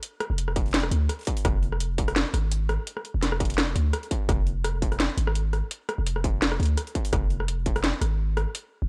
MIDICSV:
0, 0, Header, 1, 3, 480
1, 0, Start_track
1, 0, Tempo, 355030
1, 39, Time_signature, 4, 2, 24, 8
1, 12011, End_track
2, 0, Start_track
2, 0, Title_t, "808-style bass"
2, 0, Program_c, 0, 38
2, 405, Note_on_c, 0, 29, 86
2, 1226, Note_off_c, 0, 29, 0
2, 1234, Note_on_c, 0, 38, 97
2, 1460, Note_off_c, 0, 38, 0
2, 1959, Note_on_c, 0, 29, 106
2, 3033, Note_off_c, 0, 29, 0
2, 3159, Note_on_c, 0, 32, 98
2, 3754, Note_off_c, 0, 32, 0
2, 4251, Note_on_c, 0, 29, 85
2, 5068, Note_off_c, 0, 29, 0
2, 5076, Note_on_c, 0, 38, 95
2, 5301, Note_off_c, 0, 38, 0
2, 5797, Note_on_c, 0, 29, 102
2, 6873, Note_off_c, 0, 29, 0
2, 6996, Note_on_c, 0, 32, 102
2, 7592, Note_off_c, 0, 32, 0
2, 8090, Note_on_c, 0, 29, 88
2, 8911, Note_off_c, 0, 29, 0
2, 8919, Note_on_c, 0, 38, 98
2, 9142, Note_off_c, 0, 38, 0
2, 9638, Note_on_c, 0, 29, 105
2, 10713, Note_off_c, 0, 29, 0
2, 10835, Note_on_c, 0, 32, 101
2, 11432, Note_off_c, 0, 32, 0
2, 11925, Note_on_c, 0, 29, 92
2, 12011, Note_off_c, 0, 29, 0
2, 12011, End_track
3, 0, Start_track
3, 0, Title_t, "Drums"
3, 37, Note_on_c, 9, 42, 79
3, 172, Note_off_c, 9, 42, 0
3, 276, Note_on_c, 9, 37, 77
3, 276, Note_on_c, 9, 42, 39
3, 412, Note_off_c, 9, 37, 0
3, 412, Note_off_c, 9, 42, 0
3, 515, Note_on_c, 9, 42, 79
3, 647, Note_on_c, 9, 37, 50
3, 651, Note_off_c, 9, 42, 0
3, 757, Note_on_c, 9, 42, 68
3, 759, Note_on_c, 9, 36, 65
3, 783, Note_off_c, 9, 37, 0
3, 890, Note_on_c, 9, 46, 17
3, 893, Note_off_c, 9, 42, 0
3, 894, Note_off_c, 9, 36, 0
3, 919, Note_off_c, 9, 46, 0
3, 919, Note_on_c, 9, 46, 19
3, 963, Note_off_c, 9, 46, 0
3, 963, Note_on_c, 9, 46, 22
3, 1001, Note_off_c, 9, 46, 0
3, 1001, Note_on_c, 9, 38, 126
3, 1001, Note_on_c, 9, 42, 87
3, 1001, Note_on_c, 9, 46, 25
3, 1079, Note_off_c, 9, 46, 0
3, 1079, Note_on_c, 9, 46, 32
3, 1127, Note_on_c, 9, 37, 76
3, 1136, Note_off_c, 9, 38, 0
3, 1136, Note_off_c, 9, 42, 0
3, 1214, Note_off_c, 9, 46, 0
3, 1237, Note_on_c, 9, 42, 72
3, 1263, Note_off_c, 9, 37, 0
3, 1372, Note_off_c, 9, 42, 0
3, 1478, Note_on_c, 9, 37, 51
3, 1478, Note_on_c, 9, 42, 79
3, 1609, Note_on_c, 9, 46, 16
3, 1613, Note_off_c, 9, 37, 0
3, 1613, Note_off_c, 9, 42, 0
3, 1637, Note_off_c, 9, 46, 0
3, 1637, Note_on_c, 9, 46, 20
3, 1663, Note_off_c, 9, 46, 0
3, 1663, Note_on_c, 9, 46, 25
3, 1691, Note_off_c, 9, 46, 0
3, 1691, Note_on_c, 9, 46, 31
3, 1719, Note_on_c, 9, 36, 64
3, 1719, Note_on_c, 9, 42, 71
3, 1826, Note_off_c, 9, 46, 0
3, 1849, Note_on_c, 9, 46, 68
3, 1854, Note_off_c, 9, 36, 0
3, 1854, Note_off_c, 9, 42, 0
3, 1958, Note_on_c, 9, 37, 74
3, 1958, Note_on_c, 9, 42, 80
3, 1960, Note_on_c, 9, 36, 126
3, 1984, Note_off_c, 9, 46, 0
3, 2093, Note_off_c, 9, 37, 0
3, 2093, Note_off_c, 9, 42, 0
3, 2095, Note_off_c, 9, 36, 0
3, 2200, Note_on_c, 9, 46, 36
3, 2331, Note_on_c, 9, 37, 52
3, 2335, Note_off_c, 9, 46, 0
3, 2439, Note_on_c, 9, 42, 80
3, 2466, Note_off_c, 9, 37, 0
3, 2574, Note_off_c, 9, 42, 0
3, 2680, Note_on_c, 9, 36, 64
3, 2680, Note_on_c, 9, 42, 67
3, 2813, Note_on_c, 9, 37, 79
3, 2813, Note_on_c, 9, 46, 35
3, 2815, Note_off_c, 9, 42, 0
3, 2816, Note_off_c, 9, 36, 0
3, 2921, Note_on_c, 9, 38, 127
3, 2921, Note_on_c, 9, 42, 84
3, 2948, Note_off_c, 9, 37, 0
3, 2948, Note_off_c, 9, 46, 0
3, 3057, Note_off_c, 9, 38, 0
3, 3057, Note_off_c, 9, 42, 0
3, 3162, Note_on_c, 9, 37, 51
3, 3162, Note_on_c, 9, 42, 69
3, 3297, Note_off_c, 9, 37, 0
3, 3297, Note_off_c, 9, 42, 0
3, 3401, Note_on_c, 9, 42, 82
3, 3536, Note_off_c, 9, 42, 0
3, 3639, Note_on_c, 9, 37, 79
3, 3639, Note_on_c, 9, 46, 35
3, 3775, Note_off_c, 9, 37, 0
3, 3775, Note_off_c, 9, 46, 0
3, 3880, Note_on_c, 9, 42, 76
3, 4011, Note_on_c, 9, 37, 49
3, 4015, Note_off_c, 9, 42, 0
3, 4120, Note_on_c, 9, 42, 34
3, 4146, Note_off_c, 9, 37, 0
3, 4256, Note_off_c, 9, 42, 0
3, 4361, Note_on_c, 9, 38, 63
3, 4361, Note_on_c, 9, 42, 76
3, 4490, Note_on_c, 9, 37, 78
3, 4496, Note_off_c, 9, 38, 0
3, 4496, Note_off_c, 9, 42, 0
3, 4600, Note_on_c, 9, 36, 67
3, 4602, Note_on_c, 9, 42, 58
3, 4626, Note_off_c, 9, 37, 0
3, 4667, Note_off_c, 9, 42, 0
3, 4667, Note_on_c, 9, 42, 48
3, 4732, Note_off_c, 9, 42, 0
3, 4732, Note_on_c, 9, 42, 38
3, 4732, Note_on_c, 9, 46, 35
3, 4735, Note_off_c, 9, 36, 0
3, 4785, Note_off_c, 9, 42, 0
3, 4785, Note_on_c, 9, 42, 32
3, 4840, Note_off_c, 9, 42, 0
3, 4840, Note_on_c, 9, 37, 51
3, 4840, Note_on_c, 9, 38, 127
3, 4840, Note_on_c, 9, 42, 78
3, 4867, Note_off_c, 9, 46, 0
3, 4975, Note_off_c, 9, 37, 0
3, 4975, Note_off_c, 9, 38, 0
3, 4975, Note_off_c, 9, 42, 0
3, 5078, Note_on_c, 9, 42, 64
3, 5214, Note_off_c, 9, 42, 0
3, 5318, Note_on_c, 9, 37, 73
3, 5318, Note_on_c, 9, 42, 72
3, 5450, Note_on_c, 9, 46, 35
3, 5453, Note_off_c, 9, 37, 0
3, 5453, Note_off_c, 9, 42, 0
3, 5558, Note_on_c, 9, 36, 61
3, 5558, Note_on_c, 9, 42, 64
3, 5585, Note_off_c, 9, 46, 0
3, 5693, Note_off_c, 9, 36, 0
3, 5693, Note_off_c, 9, 42, 0
3, 5798, Note_on_c, 9, 36, 115
3, 5799, Note_on_c, 9, 37, 53
3, 5799, Note_on_c, 9, 42, 75
3, 5933, Note_off_c, 9, 36, 0
3, 5934, Note_off_c, 9, 37, 0
3, 5934, Note_off_c, 9, 42, 0
3, 6039, Note_on_c, 9, 46, 37
3, 6174, Note_off_c, 9, 46, 0
3, 6279, Note_on_c, 9, 37, 74
3, 6279, Note_on_c, 9, 42, 72
3, 6415, Note_off_c, 9, 37, 0
3, 6415, Note_off_c, 9, 42, 0
3, 6519, Note_on_c, 9, 36, 63
3, 6519, Note_on_c, 9, 42, 60
3, 6649, Note_on_c, 9, 37, 53
3, 6649, Note_on_c, 9, 46, 35
3, 6654, Note_off_c, 9, 36, 0
3, 6654, Note_off_c, 9, 42, 0
3, 6758, Note_on_c, 9, 38, 120
3, 6758, Note_on_c, 9, 42, 76
3, 6784, Note_off_c, 9, 37, 0
3, 6784, Note_off_c, 9, 46, 0
3, 6893, Note_off_c, 9, 38, 0
3, 6893, Note_off_c, 9, 42, 0
3, 6998, Note_on_c, 9, 42, 66
3, 7129, Note_on_c, 9, 37, 78
3, 7133, Note_off_c, 9, 42, 0
3, 7238, Note_on_c, 9, 42, 73
3, 7264, Note_off_c, 9, 37, 0
3, 7374, Note_off_c, 9, 42, 0
3, 7478, Note_on_c, 9, 37, 53
3, 7478, Note_on_c, 9, 46, 37
3, 7614, Note_off_c, 9, 37, 0
3, 7614, Note_off_c, 9, 46, 0
3, 7720, Note_on_c, 9, 42, 77
3, 7855, Note_off_c, 9, 42, 0
3, 7961, Note_on_c, 9, 37, 77
3, 7961, Note_on_c, 9, 42, 33
3, 8096, Note_off_c, 9, 37, 0
3, 8096, Note_off_c, 9, 42, 0
3, 8200, Note_on_c, 9, 42, 73
3, 8329, Note_on_c, 9, 37, 54
3, 8336, Note_off_c, 9, 42, 0
3, 8439, Note_on_c, 9, 36, 60
3, 8439, Note_on_c, 9, 42, 58
3, 8464, Note_off_c, 9, 37, 0
3, 8574, Note_off_c, 9, 36, 0
3, 8574, Note_off_c, 9, 42, 0
3, 8681, Note_on_c, 9, 38, 120
3, 8681, Note_on_c, 9, 42, 78
3, 8681, Note_on_c, 9, 46, 39
3, 8810, Note_on_c, 9, 37, 76
3, 8816, Note_off_c, 9, 38, 0
3, 8816, Note_off_c, 9, 42, 0
3, 8816, Note_off_c, 9, 46, 0
3, 8920, Note_on_c, 9, 42, 29
3, 8946, Note_off_c, 9, 37, 0
3, 8961, Note_off_c, 9, 42, 0
3, 8961, Note_on_c, 9, 42, 42
3, 8997, Note_off_c, 9, 42, 0
3, 8997, Note_on_c, 9, 42, 52
3, 9133, Note_off_c, 9, 42, 0
3, 9159, Note_on_c, 9, 37, 51
3, 9159, Note_on_c, 9, 42, 73
3, 9289, Note_on_c, 9, 46, 39
3, 9294, Note_off_c, 9, 37, 0
3, 9294, Note_off_c, 9, 42, 0
3, 9398, Note_on_c, 9, 42, 65
3, 9399, Note_on_c, 9, 36, 57
3, 9425, Note_off_c, 9, 46, 0
3, 9528, Note_on_c, 9, 46, 71
3, 9533, Note_off_c, 9, 42, 0
3, 9534, Note_off_c, 9, 36, 0
3, 9636, Note_on_c, 9, 37, 77
3, 9636, Note_on_c, 9, 42, 74
3, 9639, Note_on_c, 9, 36, 117
3, 9664, Note_off_c, 9, 46, 0
3, 9771, Note_off_c, 9, 37, 0
3, 9771, Note_off_c, 9, 42, 0
3, 9774, Note_off_c, 9, 36, 0
3, 9874, Note_on_c, 9, 46, 38
3, 10006, Note_on_c, 9, 37, 55
3, 10009, Note_off_c, 9, 46, 0
3, 10116, Note_on_c, 9, 42, 78
3, 10142, Note_off_c, 9, 37, 0
3, 10252, Note_off_c, 9, 42, 0
3, 10356, Note_on_c, 9, 42, 62
3, 10359, Note_on_c, 9, 36, 61
3, 10490, Note_on_c, 9, 37, 82
3, 10490, Note_on_c, 9, 46, 42
3, 10491, Note_off_c, 9, 42, 0
3, 10494, Note_off_c, 9, 36, 0
3, 10596, Note_on_c, 9, 38, 115
3, 10596, Note_on_c, 9, 42, 81
3, 10625, Note_off_c, 9, 37, 0
3, 10625, Note_off_c, 9, 46, 0
3, 10731, Note_off_c, 9, 38, 0
3, 10731, Note_off_c, 9, 42, 0
3, 10837, Note_on_c, 9, 37, 59
3, 10837, Note_on_c, 9, 42, 66
3, 10972, Note_off_c, 9, 37, 0
3, 10972, Note_off_c, 9, 42, 0
3, 11317, Note_on_c, 9, 37, 82
3, 11317, Note_on_c, 9, 46, 37
3, 11452, Note_off_c, 9, 37, 0
3, 11452, Note_off_c, 9, 46, 0
3, 11557, Note_on_c, 9, 42, 78
3, 11692, Note_off_c, 9, 42, 0
3, 12011, End_track
0, 0, End_of_file